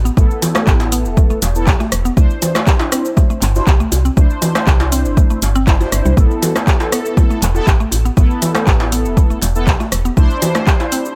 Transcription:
Already playing: A1
0.05 B3, cabasa
0.17 A1 A3 B3 E4 A4, kick, cabasa
0.31 cabasa
0.42 E3, open hi-hat, djembe tone, cabasa
0.55 A3, cross-stick, djembe slap, cabasa
0.67 A1 G4, kick, clap, cabasa
0.80 E4, djembe slap, cabasa
0.92 B3, open hi-hat, cabasa
1.05 E1, cabasa
1.17 A3, kick, cabasa
1.30 A3, cabasa
1.42 E1, open hi-hat, djembe slap, cabasa
1.55 B3 E4 A4, cabasa
1.67 B1 G4, kick, clap, cabasa
1.80 A3, djembe tone, cabasa
1.92 E1, cross-stick, open hi-hat, cabasa
2.05 B3, cabasa
2.17 C2 A3 D4 E4 C5, kick, cabasa
2.30 cabasa
2.42 E3, open hi-hat, djembe tone, cabasa
2.55 A3, cross-stick, djembe slap, cabasa
2.67 G4, kick, clap, cabasa
2.79 E4, djembe slap, cabasa
2.92 C4, cross-stick, open hi-hat, cabasa
3.05 cabasa
3.17 A3, kick, djembe tone, cabasa
3.30 A3, cabasa
3.42 G1, clap, open hi-hat, cabasa
3.55 D4 E4 C5, djembe tone, cabasa
3.67 C2 G4, kick, clap, cabasa
3.80 A3, cabasa
3.92 C2, open hi-hat, djembe tone, cabasa
4.05 C4, cabasa
4.17 C2 A3 D4 E4 C5, kick, cabasa
4.30 cabasa
4.42 E3, open hi-hat, djembe tone, cabasa
4.55 A3, cross-stick, djembe slap, cabasa
4.67 C2 G4, kick, clap, cabasa
4.80 E4, djembe slap, cabasa
4.92 C4, open hi-hat, cabasa
5.05 G1, cabasa
5.17 A3, kick, cabasa
5.30 A3, cabasa
5.42 G1, open hi-hat, djembe slap, cabasa
5.55 C4, cabasa
5.67 G1 D4 E4 C5, kick, clap, cabasa
5.80 D4 E4 C5, djembe tone, cabasa
5.92 G1, cross-stick, open hi-hat, cabasa
6.05 C2 G3, cabasa
6.17 A1 A3 B3 E4 A4, kick, cabasa
6.31 cabasa
6.42 E3, open hi-hat, djembe tone, cabasa
6.56 A3, cross-stick, djembe slap, cabasa
6.67 G4, kick, clap, cabasa
6.80 E4, djembe slap, cabasa
6.92 B3, cross-stick, open hi-hat, cabasa
7.06 cabasa
7.17 A3, kick, djembe tone, cabasa
7.31 A3, cabasa
7.42 E1, clap, open hi-hat, cabasa
7.55 B3 E4 A4, djembe tone, cabasa
7.67 A1 G4, kick, clap, cabasa
7.80 A3, cabasa
7.92 A1, open hi-hat, djembe tone, cabasa
8.05 B3, cabasa
8.17 A1 A3 B3 E4 A4, kick, cabasa
8.30 cabasa
8.42 E3, open hi-hat, djembe tone, cabasa
8.55 A3, cross-stick, djembe slap, cabasa
8.67 A1 G4, kick, clap, cabasa
8.80 E4, djembe slap, cabasa
8.92 B3, open hi-hat, cabasa
9.05 E1, cabasa
9.17 A3, kick, cabasa
9.30 A3, cabasa
9.42 E1, open hi-hat, djembe slap, cabasa
9.55 B3 E4 A4, cabasa
9.67 B1 G4, kick, clap, cabasa
9.80 A3, djembe tone, cabasa
9.92 E1, cross-stick, open hi-hat, cabasa
10.05 B3, cabasa
10.17 C2 A3 D4 E4 C5, kick, cabasa
10.30 cabasa
10.42 E3, open hi-hat, djembe tone, cabasa
10.55 A3, cross-stick, djembe slap, cabasa
10.67 G4, kick, clap, cabasa
10.80 E4, djembe slap, cabasa
10.92 C4, open hi-hat, cabasa
11.05 cabasa

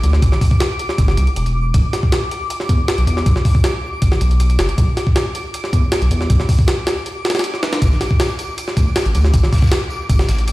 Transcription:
Already playing: D6
0.03 D2, closed hi-hat
0.13 snare
0.22 A1, kick, closed hi-hat
0.32 snare
0.41 kick, open hi-hat
0.51 kick
0.60 snare, closed hi-hat
0.79 closed hi-hat
0.89 snare
0.98 G1, kick, closed hi-hat
1.08 snare
1.17 C2, closed hi-hat
1.27 closed hi-hat
1.36 E1, closed hi-hat
1.46 closed hi-hat
1.74 B1, kick, closed hi-hat
1.93 snare, closed hi-hat
2.03 kick
2.12 snare, closed hi-hat
2.31 closed hi-hat
2.50 closed hi-hat
2.60 snare
2.69 E2, kick, closed hi-hat
2.88 snare, closed hi-hat
2.98 B1, closed hi-hat
3.07 E2, closed hi-hat
3.17 snare
3.26 B1, kick, closed hi-hat
3.36 snare
3.45 kick, open hi-hat
3.55 kick
3.64 snare, closed hi-hat
4.02 A1, kick, closed hi-hat
4.12 snare
4.21 B1, closed hi-hat
4.31 closed hi-hat
4.40 closed hi-hat
4.50 closed hi-hat
4.59 F#1, snare, closed hi-hat
4.69 closed hi-hat
4.78 B1, kick, closed hi-hat
4.97 snare, closed hi-hat
5.07 kick
5.16 snare, closed hi-hat
5.35 closed hi-hat
5.54 closed hi-hat
5.64 snare
5.73 E2, kick, closed hi-hat
5.92 snare, closed hi-hat
6.02 B1, closed hi-hat
6.11 E2, closed hi-hat
6.21 snare
6.30 B1, kick, closed hi-hat
6.40 snare
6.49 kick, open hi-hat
6.59 kick
6.68 snare, closed hi-hat
6.87 snare, closed hi-hat
7.06 closed hi-hat
7.25 snare, closed hi-hat
7.30 snare, closed hi-hat
7.35 snare, closed hi-hat
7.39 snare, closed hi-hat
7.44 closed hi-hat
7.54 snare
7.63 snare, closed hi-hat
7.73 snare, closed hi-hat
7.82 A1 D6, kick, closed hi-hat, tambourine
7.92 snare
8.01 snare, closed hi-hat, tambourine
8.11 kick
8.19 snare, closed hi-hat, tambourine
8.29 closed hi-hat
8.39 closed hi-hat, tambourine
8.58 closed hi-hat, tambourine
8.67 snare
8.77 D2, kick, closed hi-hat, tambourine
8.96 snare, closed hi-hat, tambourine
9.06 A1, closed hi-hat
9.14 D2, closed hi-hat, tambourine
9.25 snare
9.33 A1, kick, closed hi-hat, tambourine
9.44 snare
9.53 kick, snare, open hi-hat, tambourine
9.57 snare, tambourine
9.62 kick, snare, tambourine
9.66 snare, tambourine
9.71 snare, closed hi-hat, tambourine
9.90 tambourine
10.10 G1, kick, closed hi-hat, tambourine
10.19 snare
10.28 A1, snare, closed hi-hat, tambourine
10.38 closed hi-hat
10.47 closed hi-hat, tambourine

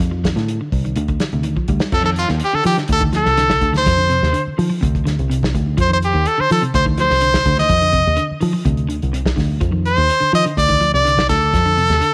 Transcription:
0.00 F2, kick, closed hi-hat
0.11 F3
0.24 D#3, kick, snare, closed hi-hat
0.36 A2 D3, snare, closed hi-hat
0.48 closed hi-hat
0.61 D3
0.72 C2, kick, open hi-hat
0.85 D#3, closed hi-hat
0.96 D2 D3, closed hi-hat
1.08 D3, kick, closed hi-hat
1.20 snare, closed hi-hat
1.32 D2 C3, closed hi-hat
1.43 D#3, closed hi-hat
1.57 F3, kick
1.68 D2 G3, kick, closed hi-hat
1.80 snare, closed hi-hat
1.92 F2 F3 A4, kick, crash
2.04 D#3 A4
2.16 F4, closed hi-hat
2.29 D#2 D#3, snare
2.40 closed hi-hat
2.44 G4
2.53 D3 A4, muted fingered electric bass stroke
2.64 D#3 F3 G4, open hi-hat
2.77 D3, snare, closed hi-hat
2.88 D2, kick, closed hi-hat
2.92 A4
3.00 D#3, kick
3.13 F3 A4, snare, closed hi-hat
3.25 C2, snare
3.37 D3, snare, closed hi-hat
3.50 kick, snare
3.61 D2 D3, kick, closed hi-hat
3.73 D#3, snare, closed hi-hat
3.77 C5
3.86 F2, kick, snare, closed hi-hat
3.98 D3, closed hi-hat
4.09 C3, closed hi-hat
4.23 D#2, snare
4.33 D3, closed hi-hat
4.47 muted fingered electric bass stroke
4.58 D#3 F3, open hi-hat
4.70 F3
4.81 D2 C3, kick, closed hi-hat
4.95 kick, closed hi-hat
5.05 D3, snare, closed hi-hat
5.19 C2, closed hi-hat
5.30 C3, closed hi-hat
5.43 kick, snare
5.54 D2 D3, kick, closed hi-hat
5.77 F2 F3 C5, kick, closed hi-hat
5.90 D#3 C5
6.02 G4, closed hi-hat
6.14 D#2 D#3
6.26 A4, closed hi-hat
6.38 D3 C5, muted fingered electric bass stroke
6.50 D#3 F3 A4, open hi-hat
6.62 C3, closed hi-hat
6.74 D2 C5, kick, closed hi-hat
6.86 D#3, kick
6.98 F3 C5, snare, closed hi-hat
7.10 C2, snare
7.21 D3, closed hi-hat
7.34 kick, snare
7.45 D2 D3, kick, closed hi-hat
7.57 D#3 D#5, snare, closed hi-hat
7.69 F2, kick, closed hi-hat
7.82 D3, closed hi-hat
7.92 C3, kick, closed hi-hat
8.07 D#2
8.17 D3, closed hi-hat
8.31 muted fingered electric bass stroke
8.41 D#3 F3, open hi-hat
8.53 F3
8.65 D2 C3, kick, closed hi-hat
8.77 closed hi-hat
8.89 D3, closed hi-hat
9.02 C2, closed hi-hat
9.13 C3, closed hi-hat
9.26 kick, snare
9.36 D2 D3, kick, snare, open hi-hat
9.61 F2 F3, kick, closed hi-hat
9.72 D#3
9.85 C5, closed hi-hat
9.97 D#2 D#3
10.09 closed hi-hat
10.20 D3, muted fingered electric bass stroke
10.33 D#3 F3 D#5, open hi-hat
10.45 D3, closed hi-hat
10.57 D2 D5, kick, closed hi-hat
10.69 D#3, kick
10.81 F3, closed hi-hat
10.94 C2 D5
11.05 D3, closed hi-hat
11.18 kick, snare
11.29 D2 D3 A4, kick, snare, closed hi-hat
11.42 closed hi-hat
11.53 F2, kick, snare, closed hi-hat
11.66 D3, closed hi-hat
11.77 C3, closed hi-hat
11.89 D#2, snare
12.01 D3, closed hi-hat

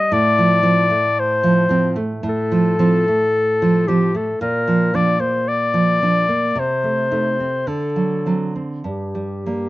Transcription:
Already playing: G3 D#5
0.12 A2 D5
0.38 F3
0.63 F3 C4
0.90 A3
1.19 C5
1.43 F3
1.69 F3 C4
1.96 A3
2.23 A2
2.29 A4
2.52 F3
2.79 F3 C4
3.08 A3
3.62 F3
3.87 F3 C4 G4
4.15 A3 A4
4.41 A#2 A#4
4.68 F3
4.94 F3 D4 D5
5.19 A#3 C5
5.48 D5
5.74 F3
6.02 F3 D4
6.29 A#3
6.55 C3 C5
6.83 A3
7.11 A3 D#4
7.40 C4
7.67 D3 A4
7.96 F#3
8.26 F#3 C4
8.56 C4
8.84 G2 G4
9.15 G3
9.46 G3 A#3

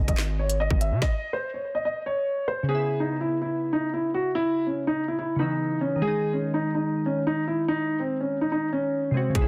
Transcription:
0.08 G#1 D#5, kick, closed hi-hat
0.18 snare, clap
0.39 C#5
0.50 closed hi-hat
0.60 D#5
0.70 G#1, kick
0.81 E5, closed hi-hat
0.91 C3
1.02 D#5, kick, snare
1.33 C5
1.54 C#5
1.75 D#5
1.85 D#5
2.06 C#5
2.48 C5
2.63 C#3
2.69 B3 G#4
2.75 E4
3.00 D#4
3.21 E4
3.42 E4
3.73 D#4
3.94 E4
4.14 F#4
4.35 E4
4.67 C#4
4.87 D#4
5.08 E4
5.19 E4
5.36 C#3 B3 D#4
5.42 E3
5.81 C#4
5.96 D#3
6.02 G#3 G#4
6.07 D#4
6.33 C#4
6.54 D#4
6.75 D#4
7.06 C#4
7.27 D#4
7.48 E4
7.68 D#4
8.00 C4
8.21 C#4
8.41 D#4
8.52 D#4
8.73 C#4
9.11 C3 G#3 C4
9.17 F#4
9.30 C#3
9.35 C#2 E3 B3 G#4 B4 C#5, kick, closed hi-hat
9.41 E4

